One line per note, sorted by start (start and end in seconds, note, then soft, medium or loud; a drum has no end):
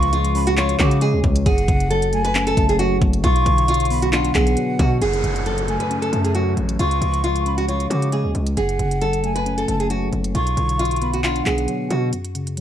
0.00 0.76 C#2 loud
0.00 0.79 C#3 loud
0.00 1.02 F3 medium
0.00 0.10 F4 loud
0.00 0.31 C#6 loud
0.00 closed hi-hat medium
0.13 1.00 G#3 medium
0.13 0.45 F4 medium
0.13 closed hi-hat medium
0.25 closed hi-hat medium
0.35 0.78 C#4 medium
0.35 0.56 B5 medium
0.35 open hi-hat medium
0.47 0.55 F#4 loud
0.47 closed hi-hat medium
0.57 0.75 F4 medium
0.57 1.46 C#5 loud
0.57 0.78 C#6 medium
0.57 clap loud
0.57 closed hi-hat medium
0.69 closed hi-hat medium
0.79 1.15 C#3 loud
0.79 1.46 C#4 medium
0.79 0.97 F#4 medium
0.79 1.00 D6 medium
0.79 kick loud
0.79 clap loud
0.79 closed hi-hat medium
0.91 closed hi-hat medium
1.01 1.46 G#3 loud
1.01 1.19 G#4 medium
1.01 closed hi-hat medium
1.13 1.23 D2 loud
1.24 1.45 C#2 loud
1.24 kick loud
1.24 closed hi-hat soft
1.36 closed hi-hat medium
1.46 1.67 F#1 loud
1.46 2.57 F#2 medium
1.46 1.88 G#4 medium
1.46 2.09 F#5 loud
1.46 kick loud
1.46 closed hi-hat medium
1.58 closed hi-hat medium
1.68 2.54 F#1 loud
1.68 2.79 C#3 medium
1.68 kick medium
1.68 closed hi-hat medium
1.80 closed hi-hat medium
1.90 2.78 F#3 medium
1.90 2.22 A4 medium
1.90 closed hi-hat medium
2.02 closed hi-hat medium
2.13 2.56 A3 medium
2.13 2.55 G#5 loud
2.13 closed hi-hat medium
2.25 2.42 B4 medium
2.25 closed hi-hat medium
2.35 3.24 C#4 loud
2.35 clap loud
2.35 closed hi-hat medium
2.47 2.64 A4 medium
2.47 closed hi-hat medium
2.57 3.00 F#1 loud
2.57 3.24 A3 medium
2.57 2.78 A5 medium
2.57 kick loud
2.57 closed hi-hat medium
2.69 2.77 G#4 medium
2.69 closed hi-hat medium
2.79 3.24 F#3 medium
2.79 2.97 F#4 medium
2.79 closed hi-hat medium
3.02 3.23 F#1 loud
3.02 kick loud
3.02 closed hi-hat soft
3.13 closed hi-hat medium
3.24 3.45 B1 loud
3.24 4.35 B2 medium
3.24 3.66 F4 medium
3.24 3.86 C#6 loud
3.24 kick loud
3.24 closed hi-hat medium
3.36 closed hi-hat medium
3.46 4.31 B1 loud
3.46 4.57 D3 medium
3.46 kick medium
3.46 closed hi-hat medium
3.58 closed hi-hat medium
3.68 4.56 F#3 medium
3.68 4.00 F4 medium
3.68 closed hi-hat medium
3.74 closed hi-hat medium
3.80 closed hi-hat medium
3.85 closed hi-hat soft
3.90 4.34 B3 medium
3.90 4.11 B5 medium
3.90 open hi-hat medium
4.02 4.11 F#4 medium
4.02 closed hi-hat medium
4.13 5.02 D4 medium
4.13 4.30 F4 medium
4.13 4.98 F#5 medium
4.13 clap loud
4.13 closed hi-hat medium
4.25 closed hi-hat medium
4.35 4.56 B1 loud
4.35 5.02 B3 medium
4.35 4.77 G#4 medium
4.35 kick loud
4.35 clap loud
4.35 closed hi-hat medium
4.47 closed hi-hat medium
4.57 5.02 F#3 medium
4.57 closed hi-hat medium
4.79 5.01 B2 loud
4.79 4.97 F#4 medium
4.79 kick medium
4.79 closed hi-hat medium
5.01 5.23 F#1 loud
5.01 6.13 F#2 medium
5.01 5.43 G#4 loud
5.01 5.64 F#5 loud
5.01 closed hi-hat medium
5.01 downlifter medium
5.13 closed hi-hat medium
5.24 5.78 F#1 loud
5.24 6.35 C#3 medium
5.24 closed hi-hat medium
5.36 closed hi-hat medium
5.46 6.34 F#3 medium
5.46 5.78 A4 medium
5.46 closed hi-hat medium
5.58 closed hi-hat medium
5.68 6.11 A3 medium
5.68 6.10 G#5 medium
5.68 closed hi-hat medium
5.80 5.97 B4 medium
5.80 closed hi-hat medium
5.90 6.79 C#4 loud
5.90 closed hi-hat medium
6.02 6.19 A4 medium
6.02 closed hi-hat medium
6.12 6.55 F#2 loud
6.12 6.79 A3 medium
6.12 6.34 A5 medium
6.12 closed hi-hat medium
6.24 6.33 G#4 medium
6.24 closed hi-hat medium
6.35 6.79 F#3 medium
6.35 6.52 F#4 medium
6.35 closed hi-hat medium
6.57 6.78 A1 loud
6.57 closed hi-hat soft
6.69 closed hi-hat medium
6.79 7.01 C#2 loud
6.79 7.90 C#3 medium
6.79 7.21 F4 medium
6.79 7.42 C#6 loud
6.79 closed hi-hat medium
6.91 closed hi-hat medium
7.01 7.87 C#2 loud
7.01 8.13 F3 medium
7.01 closed hi-hat medium
7.14 closed hi-hat medium
7.24 8.11 G#3 medium
7.24 7.56 F4 medium
7.24 closed hi-hat medium
7.36 closed hi-hat medium
7.46 7.89 C#4 medium
7.46 7.67 B5 medium
7.46 closed hi-hat medium
7.58 7.66 F#4 medium
7.58 closed hi-hat medium
7.68 7.86 F4 medium
7.68 8.57 C#5 medium
7.68 7.89 C#6 medium
7.68 closed hi-hat medium
7.80 closed hi-hat medium
7.90 8.26 C#3 loud
7.90 8.57 C#4 medium
7.90 8.08 F#4 medium
7.90 8.12 D6 medium
7.90 closed hi-hat medium
8.02 closed hi-hat medium
8.12 8.57 G#3 medium
8.12 8.30 G#4 medium
8.12 closed hi-hat medium
8.24 8.34 D2 loud
8.35 8.56 C#2 loud
8.35 closed hi-hat soft
8.47 closed hi-hat medium
8.57 8.78 F#1 loud
8.57 9.68 F#2 medium
8.57 8.99 G#4 medium
8.57 9.20 F#5 loud
8.57 closed hi-hat medium
8.69 closed hi-hat medium
8.79 9.65 F#1 loud
8.79 9.90 C#3 medium
8.79 closed hi-hat medium
8.91 closed hi-hat medium
9.01 9.89 F#3 medium
9.01 9.33 A4 medium
9.01 closed hi-hat medium
9.13 closed hi-hat medium
9.24 9.67 A3 medium
9.24 9.66 G#5 medium
9.24 closed hi-hat medium
9.35 9.53 B4 medium
9.35 closed hi-hat medium
9.46 10.35 C#4 medium
9.46 closed hi-hat medium
9.58 9.75 A4 medium
9.58 closed hi-hat medium
9.68 10.11 F#1 loud
9.68 10.35 A3 medium
9.68 9.89 A5 medium
9.68 closed hi-hat medium
9.80 9.88 G#4 medium
9.80 closed hi-hat medium
9.90 10.35 F#3 medium
9.90 10.08 F#4 medium
9.90 closed hi-hat medium
10.13 10.34 F#1 loud
10.13 closed hi-hat soft
10.24 closed hi-hat medium
10.35 10.56 B1 loud
10.35 11.46 B2 medium
10.35 10.77 F4 medium
10.35 10.98 C#6 loud
10.35 closed hi-hat medium
10.47 closed hi-hat medium
10.57 11.42 B1 loud
10.57 11.68 D3 medium
10.57 closed hi-hat medium
10.69 closed hi-hat medium
10.79 11.67 F#3 medium
10.79 11.11 F4 medium
10.79 closed hi-hat medium
10.85 closed hi-hat medium
10.91 closed hi-hat medium
10.96 closed hi-hat soft
11.01 11.45 B3 medium
11.01 11.23 B5 medium
11.01 closed hi-hat medium
11.13 11.22 F#4 medium
11.13 closed hi-hat medium
11.24 12.13 D4 medium
11.24 11.41 F4 medium
11.24 12.09 F#5 medium
11.24 clap loud
11.24 closed hi-hat medium
11.36 closed hi-hat medium
11.46 11.67 B1 loud
11.46 12.13 B3 medium
11.46 11.88 G#4 medium
11.46 clap loud
11.46 closed hi-hat medium
11.58 closed hi-hat medium
11.68 12.13 F#3 medium
11.68 closed hi-hat medium
11.90 12.12 B2 loud
11.90 12.08 F#4 medium
11.90 closed hi-hat medium
12.13 12.61 F#2 medium
12.13 closed hi-hat medium
12.25 closed hi-hat medium
12.35 12.61 C#3 medium
12.35 closed hi-hat medium
12.47 closed hi-hat medium
12.57 12.61 F#3 medium
12.57 closed hi-hat medium